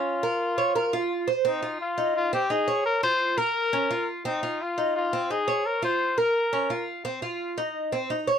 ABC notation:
X:1
M:4/4
L:1/8
Q:1/4=172
K:Fm
V:1 name="Trumpet"
F6- F z | E2 F2 F G A2 | B c2 B4 z | E2 F2 F2 A2 |
B c2 B4 z | z8 |]
V:2 name="Cuban tres"
D B2 d B F2 c | C F2 E2 C E d- | d F2 B2 D F2 | C F2 E2 C E d- |
d F2 B2 D F2 | C F2 E2 C E d |]